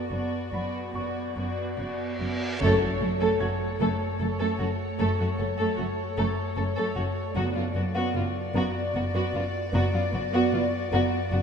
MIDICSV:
0, 0, Header, 1, 11, 480
1, 0, Start_track
1, 0, Key_signature, 3, "minor"
1, 0, Tempo, 824176
1, 68, Time_signature, 3, 2, 24, 8
1, 1987, Tempo, 791557
1, 6846, End_track
2, 0, Start_track
2, 0, Title_t, "Grand piano"
2, 0, Program_c, 0, 0
2, 0, Control_c, 0, 64, 127
2, 0, Note_on_c, 0, 69, 24
2, 0, Note_on_c, 0, 81, 35
2, 312, Note_on_c, 0, 83, 31
2, 554, Note_on_c, 0, 85, 23
2, 1018, Note_off_c, 0, 81, 0
2, 1019, Note_off_c, 0, 69, 0
2, 1496, Note_off_c, 0, 85, 0
2, 1497, Note_off_c, 0, 83, 0
2, 1530, Control_c, 0, 64, 0
2, 1629, Control_c, 0, 64, 127
2, 1983, Note_on_c, 0, 92, 38
2, 3403, Note_off_c, 0, 92, 0
2, 4397, Control_c, 0, 64, 0
2, 4493, Control_c, 0, 64, 127
2, 6846, End_track
3, 0, Start_track
3, 0, Title_t, "Violin section"
3, 0, Program_c, 1, 48
3, 63, Note_on_c, 1, 74, 34
3, 300, Note_off_c, 1, 74, 0
3, 307, Note_on_c, 1, 74, 30
3, 541, Note_off_c, 1, 74, 0
3, 548, Note_on_c, 1, 74, 26
3, 790, Note_off_c, 1, 74, 0
3, 796, Note_on_c, 1, 74, 27
3, 1028, Note_off_c, 1, 74, 0
3, 1035, Note_on_c, 1, 74, 26
3, 1271, Note_off_c, 1, 74, 0
3, 1278, Note_on_c, 1, 74, 25
3, 1513, Note_off_c, 1, 74, 0
3, 1516, Note_on_c, 1, 73, 61
3, 4359, Note_off_c, 1, 73, 0
3, 4384, Note_on_c, 1, 74, 53
3, 6846, Note_off_c, 1, 74, 0
3, 6846, End_track
4, 0, Start_track
4, 0, Title_t, "Violin section"
4, 0, Program_c, 2, 48
4, 64, Note_on_c, 2, 66, 33
4, 298, Note_off_c, 2, 66, 0
4, 305, Note_on_c, 2, 66, 28
4, 544, Note_off_c, 2, 66, 0
4, 551, Note_on_c, 2, 66, 27
4, 789, Note_off_c, 2, 66, 0
4, 796, Note_on_c, 2, 66, 25
4, 1030, Note_off_c, 2, 66, 0
4, 1037, Note_on_c, 2, 66, 26
4, 1275, Note_off_c, 2, 66, 0
4, 1282, Note_on_c, 2, 66, 25
4, 1515, Note_off_c, 2, 66, 0
4, 1515, Note_on_c, 2, 69, 67
4, 1625, Note_off_c, 2, 69, 0
4, 1636, Note_on_c, 2, 66, 33
4, 1683, Note_off_c, 2, 66, 0
4, 1755, Note_on_c, 2, 69, 33
4, 1801, Note_off_c, 2, 69, 0
4, 1870, Note_on_c, 2, 69, 52
4, 1978, Note_off_c, 2, 69, 0
4, 1983, Note_on_c, 2, 66, 36
4, 2032, Note_off_c, 2, 66, 0
4, 2225, Note_on_c, 2, 69, 46
4, 2338, Note_off_c, 2, 69, 0
4, 2462, Note_on_c, 2, 69, 38
4, 2511, Note_off_c, 2, 69, 0
4, 2587, Note_on_c, 2, 69, 51
4, 2699, Note_off_c, 2, 69, 0
4, 2706, Note_on_c, 2, 66, 41
4, 2754, Note_off_c, 2, 66, 0
4, 2946, Note_on_c, 2, 69, 53
4, 3060, Note_off_c, 2, 69, 0
4, 3071, Note_on_c, 2, 66, 36
4, 3119, Note_off_c, 2, 66, 0
4, 3185, Note_on_c, 2, 69, 38
4, 3233, Note_off_c, 2, 69, 0
4, 3300, Note_on_c, 2, 69, 52
4, 3416, Note_off_c, 2, 69, 0
4, 3418, Note_on_c, 2, 66, 33
4, 3467, Note_off_c, 2, 66, 0
4, 3661, Note_on_c, 2, 69, 49
4, 3776, Note_off_c, 2, 69, 0
4, 3901, Note_on_c, 2, 69, 40
4, 3949, Note_off_c, 2, 69, 0
4, 4020, Note_on_c, 2, 69, 47
4, 4134, Note_off_c, 2, 69, 0
4, 4140, Note_on_c, 2, 66, 43
4, 4189, Note_off_c, 2, 66, 0
4, 4378, Note_on_c, 2, 66, 48
4, 4492, Note_off_c, 2, 66, 0
4, 4501, Note_on_c, 2, 65, 35
4, 4550, Note_off_c, 2, 65, 0
4, 4624, Note_on_c, 2, 66, 37
4, 4672, Note_off_c, 2, 66, 0
4, 4744, Note_on_c, 2, 66, 54
4, 4855, Note_off_c, 2, 66, 0
4, 4868, Note_on_c, 2, 65, 33
4, 4915, Note_off_c, 2, 65, 0
4, 5107, Note_on_c, 2, 66, 52
4, 5217, Note_off_c, 2, 66, 0
4, 5347, Note_on_c, 2, 66, 46
4, 5395, Note_off_c, 2, 66, 0
4, 5465, Note_on_c, 2, 66, 52
4, 5576, Note_off_c, 2, 66, 0
4, 5589, Note_on_c, 2, 65, 42
4, 5635, Note_off_c, 2, 65, 0
4, 5831, Note_on_c, 2, 66, 55
4, 5938, Note_off_c, 2, 66, 0
4, 5948, Note_on_c, 2, 65, 43
4, 5995, Note_off_c, 2, 65, 0
4, 6069, Note_on_c, 2, 66, 42
4, 6115, Note_off_c, 2, 66, 0
4, 6188, Note_on_c, 2, 66, 61
4, 6296, Note_off_c, 2, 66, 0
4, 6311, Note_on_c, 2, 65, 37
4, 6357, Note_off_c, 2, 65, 0
4, 6549, Note_on_c, 2, 66, 58
4, 6657, Note_off_c, 2, 66, 0
4, 6787, Note_on_c, 2, 66, 52
4, 6834, Note_off_c, 2, 66, 0
4, 6846, End_track
5, 0, Start_track
5, 0, Title_t, "Viola section"
5, 0, Program_c, 3, 48
5, 0, Note_on_c, 3, 59, 34
5, 66, Note_off_c, 3, 59, 0
5, 75, Note_on_c, 3, 59, 32
5, 310, Note_off_c, 3, 59, 0
5, 317, Note_on_c, 3, 59, 28
5, 550, Note_off_c, 3, 59, 0
5, 557, Note_on_c, 3, 59, 29
5, 795, Note_off_c, 3, 59, 0
5, 803, Note_on_c, 3, 59, 26
5, 1036, Note_off_c, 3, 59, 0
5, 1043, Note_on_c, 3, 59, 26
5, 1275, Note_off_c, 3, 59, 0
5, 1282, Note_on_c, 3, 59, 26
5, 1514, Note_off_c, 3, 59, 0
5, 1517, Note_on_c, 3, 57, 69
5, 1625, Note_off_c, 3, 57, 0
5, 1632, Note_on_c, 3, 57, 31
5, 1678, Note_off_c, 3, 57, 0
5, 1750, Note_on_c, 3, 57, 32
5, 1797, Note_off_c, 3, 57, 0
5, 1864, Note_on_c, 3, 57, 56
5, 1975, Note_off_c, 3, 57, 0
5, 1985, Note_on_c, 3, 57, 40
5, 2033, Note_off_c, 3, 57, 0
5, 2226, Note_on_c, 3, 57, 53
5, 2339, Note_off_c, 3, 57, 0
5, 2468, Note_on_c, 3, 57, 40
5, 2516, Note_off_c, 3, 57, 0
5, 2588, Note_on_c, 3, 57, 44
5, 2700, Note_off_c, 3, 57, 0
5, 2708, Note_on_c, 3, 57, 38
5, 2756, Note_off_c, 3, 57, 0
5, 2945, Note_on_c, 3, 57, 46
5, 3059, Note_off_c, 3, 57, 0
5, 3072, Note_on_c, 3, 57, 36
5, 3119, Note_off_c, 3, 57, 0
5, 3187, Note_on_c, 3, 57, 29
5, 3235, Note_off_c, 3, 57, 0
5, 3307, Note_on_c, 3, 57, 47
5, 3419, Note_off_c, 3, 57, 0
5, 3427, Note_on_c, 3, 57, 37
5, 3475, Note_off_c, 3, 57, 0
5, 3667, Note_on_c, 3, 57, 52
5, 3780, Note_off_c, 3, 57, 0
5, 3908, Note_on_c, 3, 57, 32
5, 3956, Note_off_c, 3, 57, 0
5, 4025, Note_on_c, 3, 57, 51
5, 4137, Note_off_c, 3, 57, 0
5, 4146, Note_on_c, 3, 57, 44
5, 4193, Note_off_c, 3, 57, 0
5, 4382, Note_on_c, 3, 59, 45
5, 4494, Note_off_c, 3, 59, 0
5, 4501, Note_on_c, 3, 59, 37
5, 4549, Note_off_c, 3, 59, 0
5, 4620, Note_on_c, 3, 59, 35
5, 4669, Note_off_c, 3, 59, 0
5, 4743, Note_on_c, 3, 59, 50
5, 4855, Note_off_c, 3, 59, 0
5, 4865, Note_on_c, 3, 59, 38
5, 4912, Note_off_c, 3, 59, 0
5, 5096, Note_on_c, 3, 59, 55
5, 5212, Note_off_c, 3, 59, 0
5, 5338, Note_on_c, 3, 59, 40
5, 5387, Note_off_c, 3, 59, 0
5, 5461, Note_on_c, 3, 59, 47
5, 5572, Note_off_c, 3, 59, 0
5, 5579, Note_on_c, 3, 59, 47
5, 5628, Note_off_c, 3, 59, 0
5, 5819, Note_on_c, 3, 59, 52
5, 5931, Note_off_c, 3, 59, 0
5, 5940, Note_on_c, 3, 59, 41
5, 5988, Note_off_c, 3, 59, 0
5, 6059, Note_on_c, 3, 59, 40
5, 6108, Note_off_c, 3, 59, 0
5, 6182, Note_on_c, 3, 59, 54
5, 6293, Note_off_c, 3, 59, 0
5, 6303, Note_on_c, 3, 59, 44
5, 6350, Note_off_c, 3, 59, 0
5, 6544, Note_on_c, 3, 59, 54
5, 6655, Note_off_c, 3, 59, 0
5, 6787, Note_on_c, 3, 59, 44
5, 6835, Note_off_c, 3, 59, 0
5, 6846, End_track
6, 0, Start_track
6, 0, Title_t, "Cello section"
6, 0, Program_c, 4, 48
6, 65, Note_on_c, 4, 42, 36
6, 112, Note_off_c, 4, 42, 0
6, 311, Note_on_c, 4, 42, 31
6, 357, Note_off_c, 4, 42, 0
6, 554, Note_on_c, 4, 42, 29
6, 600, Note_off_c, 4, 42, 0
6, 799, Note_on_c, 4, 42, 27
6, 846, Note_off_c, 4, 42, 0
6, 1039, Note_on_c, 4, 42, 30
6, 1086, Note_off_c, 4, 42, 0
6, 1279, Note_on_c, 4, 42, 30
6, 1326, Note_off_c, 4, 42, 0
6, 1517, Note_on_c, 4, 42, 75
6, 1626, Note_off_c, 4, 42, 0
6, 1633, Note_on_c, 4, 42, 38
6, 1679, Note_off_c, 4, 42, 0
6, 1752, Note_on_c, 4, 42, 38
6, 1798, Note_off_c, 4, 42, 0
6, 1867, Note_on_c, 4, 42, 51
6, 1913, Note_off_c, 4, 42, 0
6, 1985, Note_on_c, 4, 42, 38
6, 2034, Note_off_c, 4, 42, 0
6, 2227, Note_on_c, 4, 42, 56
6, 2275, Note_off_c, 4, 42, 0
6, 2468, Note_on_c, 4, 42, 38
6, 2516, Note_off_c, 4, 42, 0
6, 2588, Note_on_c, 4, 42, 50
6, 2636, Note_off_c, 4, 42, 0
6, 2706, Note_on_c, 4, 42, 38
6, 2755, Note_off_c, 4, 42, 0
6, 2946, Note_on_c, 4, 42, 52
6, 2995, Note_off_c, 4, 42, 0
6, 3069, Note_on_c, 4, 42, 37
6, 3117, Note_off_c, 4, 42, 0
6, 3186, Note_on_c, 4, 42, 35
6, 3234, Note_off_c, 4, 42, 0
6, 3307, Note_on_c, 4, 42, 51
6, 3355, Note_off_c, 4, 42, 0
6, 3428, Note_on_c, 4, 42, 35
6, 3476, Note_off_c, 4, 42, 0
6, 3664, Note_on_c, 4, 42, 53
6, 3713, Note_off_c, 4, 42, 0
6, 3906, Note_on_c, 4, 42, 38
6, 3954, Note_off_c, 4, 42, 0
6, 4026, Note_on_c, 4, 42, 51
6, 4074, Note_off_c, 4, 42, 0
6, 4146, Note_on_c, 4, 42, 39
6, 4194, Note_off_c, 4, 42, 0
6, 4381, Note_on_c, 4, 42, 55
6, 4429, Note_off_c, 4, 42, 0
6, 4499, Note_on_c, 4, 42, 37
6, 4548, Note_off_c, 4, 42, 0
6, 4618, Note_on_c, 4, 42, 35
6, 4666, Note_off_c, 4, 42, 0
6, 4738, Note_on_c, 4, 42, 52
6, 4786, Note_off_c, 4, 42, 0
6, 4855, Note_on_c, 4, 42, 40
6, 4903, Note_off_c, 4, 42, 0
6, 5098, Note_on_c, 4, 42, 55
6, 5147, Note_off_c, 4, 42, 0
6, 5339, Note_on_c, 4, 42, 42
6, 5387, Note_off_c, 4, 42, 0
6, 5459, Note_on_c, 4, 42, 53
6, 5508, Note_off_c, 4, 42, 0
6, 5580, Note_on_c, 4, 42, 45
6, 5629, Note_off_c, 4, 42, 0
6, 5820, Note_on_c, 4, 42, 57
6, 5868, Note_off_c, 4, 42, 0
6, 5940, Note_on_c, 4, 42, 42
6, 5988, Note_off_c, 4, 42, 0
6, 6058, Note_on_c, 4, 42, 43
6, 6106, Note_off_c, 4, 42, 0
6, 6180, Note_on_c, 4, 42, 58
6, 6228, Note_off_c, 4, 42, 0
6, 6298, Note_on_c, 4, 42, 41
6, 6346, Note_off_c, 4, 42, 0
6, 6539, Note_on_c, 4, 42, 58
6, 6588, Note_off_c, 4, 42, 0
6, 6783, Note_on_c, 4, 42, 46
6, 6832, Note_off_c, 4, 42, 0
6, 6846, End_track
7, 0, Start_track
7, 0, Title_t, "Marimba"
7, 0, Program_c, 5, 12
7, 62, Note_on_c, 5, 42, 39
7, 210, Note_off_c, 5, 42, 0
7, 305, Note_on_c, 5, 54, 29
7, 453, Note_off_c, 5, 54, 0
7, 548, Note_on_c, 5, 42, 25
7, 697, Note_off_c, 5, 42, 0
7, 792, Note_on_c, 5, 42, 38
7, 939, Note_off_c, 5, 42, 0
7, 1279, Note_on_c, 5, 42, 23
7, 1422, Note_off_c, 5, 42, 0
7, 1512, Note_on_c, 5, 42, 53
7, 1654, Note_off_c, 5, 42, 0
7, 1747, Note_on_c, 5, 54, 42
7, 1889, Note_off_c, 5, 54, 0
7, 1980, Note_on_c, 5, 42, 37
7, 2127, Note_off_c, 5, 42, 0
7, 2222, Note_on_c, 5, 42, 55
7, 2368, Note_off_c, 5, 42, 0
7, 2466, Note_on_c, 5, 42, 38
7, 2611, Note_off_c, 5, 42, 0
7, 2705, Note_on_c, 5, 42, 39
7, 2851, Note_off_c, 5, 42, 0
7, 2945, Note_on_c, 5, 42, 55
7, 3091, Note_off_c, 5, 42, 0
7, 3185, Note_on_c, 5, 54, 38
7, 3330, Note_off_c, 5, 54, 0
7, 3427, Note_on_c, 5, 42, 36
7, 3571, Note_off_c, 5, 42, 0
7, 3667, Note_on_c, 5, 42, 54
7, 3812, Note_off_c, 5, 42, 0
7, 3906, Note_on_c, 5, 42, 38
7, 4049, Note_off_c, 5, 42, 0
7, 4145, Note_on_c, 5, 42, 39
7, 4288, Note_off_c, 5, 42, 0
7, 4384, Note_on_c, 5, 42, 53
7, 4528, Note_off_c, 5, 42, 0
7, 4625, Note_on_c, 5, 54, 42
7, 4768, Note_off_c, 5, 54, 0
7, 4865, Note_on_c, 5, 42, 38
7, 5009, Note_off_c, 5, 42, 0
7, 5107, Note_on_c, 5, 42, 60
7, 5250, Note_off_c, 5, 42, 0
7, 5826, Note_on_c, 5, 42, 62
7, 5968, Note_off_c, 5, 42, 0
7, 6062, Note_on_c, 5, 54, 43
7, 6205, Note_off_c, 5, 54, 0
7, 6544, Note_on_c, 5, 42, 62
7, 6688, Note_off_c, 5, 42, 0
7, 6783, Note_on_c, 5, 42, 44
7, 6846, Note_off_c, 5, 42, 0
7, 6846, End_track
8, 0, Start_track
8, 0, Title_t, "Timpani"
8, 0, Program_c, 6, 47
8, 1518, Note_on_c, 6, 42, 59
8, 2203, Note_off_c, 6, 42, 0
8, 4379, Note_on_c, 6, 42, 58
8, 5077, Note_off_c, 6, 42, 0
8, 6846, End_track
9, 0, Start_track
9, 0, Title_t, "Double bass section"
9, 0, Program_c, 7, 48
9, 65, Note_on_c, 7, 30, 34
9, 112, Note_off_c, 7, 30, 0
9, 307, Note_on_c, 7, 30, 30
9, 354, Note_off_c, 7, 30, 0
9, 551, Note_on_c, 7, 30, 32
9, 597, Note_off_c, 7, 30, 0
9, 798, Note_on_c, 7, 30, 28
9, 845, Note_off_c, 7, 30, 0
9, 1042, Note_on_c, 7, 30, 31
9, 1088, Note_off_c, 7, 30, 0
9, 1283, Note_on_c, 7, 30, 27
9, 1330, Note_off_c, 7, 30, 0
9, 1519, Note_on_c, 7, 30, 67
9, 1627, Note_off_c, 7, 30, 0
9, 1753, Note_on_c, 7, 30, 38
9, 1799, Note_off_c, 7, 30, 0
9, 1986, Note_on_c, 7, 30, 38
9, 2035, Note_off_c, 7, 30, 0
9, 2227, Note_on_c, 7, 30, 52
9, 2275, Note_off_c, 7, 30, 0
9, 2468, Note_on_c, 7, 30, 39
9, 2516, Note_off_c, 7, 30, 0
9, 2704, Note_on_c, 7, 30, 35
9, 2752, Note_off_c, 7, 30, 0
9, 2949, Note_on_c, 7, 30, 53
9, 2998, Note_off_c, 7, 30, 0
9, 3188, Note_on_c, 7, 30, 38
9, 3236, Note_off_c, 7, 30, 0
9, 3427, Note_on_c, 7, 30, 36
9, 3476, Note_off_c, 7, 30, 0
9, 3664, Note_on_c, 7, 30, 52
9, 3713, Note_off_c, 7, 30, 0
9, 3904, Note_on_c, 7, 30, 41
9, 3953, Note_off_c, 7, 30, 0
9, 4139, Note_on_c, 7, 30, 36
9, 4188, Note_off_c, 7, 30, 0
9, 4380, Note_on_c, 7, 30, 52
9, 4429, Note_off_c, 7, 30, 0
9, 4620, Note_on_c, 7, 30, 37
9, 4668, Note_off_c, 7, 30, 0
9, 4863, Note_on_c, 7, 30, 39
9, 4911, Note_off_c, 7, 30, 0
9, 5103, Note_on_c, 7, 30, 51
9, 5151, Note_off_c, 7, 30, 0
9, 5347, Note_on_c, 7, 30, 40
9, 5394, Note_off_c, 7, 30, 0
9, 5584, Note_on_c, 7, 30, 40
9, 5632, Note_off_c, 7, 30, 0
9, 5822, Note_on_c, 7, 30, 60
9, 5870, Note_off_c, 7, 30, 0
9, 6065, Note_on_c, 7, 30, 43
9, 6112, Note_off_c, 7, 30, 0
9, 6305, Note_on_c, 7, 30, 43
9, 6352, Note_off_c, 7, 30, 0
9, 6544, Note_on_c, 7, 30, 60
9, 6591, Note_off_c, 7, 30, 0
9, 6785, Note_on_c, 7, 30, 47
9, 6833, Note_off_c, 7, 30, 0
9, 6846, End_track
10, 0, Start_track
10, 0, Title_t, "Impact"
10, 0, Program_c, 8, 103
10, 1517, Note_on_c, 8, 60, 49
10, 2949, Note_off_c, 8, 60, 0
10, 6846, End_track
11, 0, Start_track
11, 0, Title_t, "Reverse cymbal"
11, 0, Program_c, 10, 119
11, 66, Note_on_c, 10, 60, 35
11, 1518, Note_off_c, 10, 60, 0
11, 6846, End_track
0, 0, End_of_file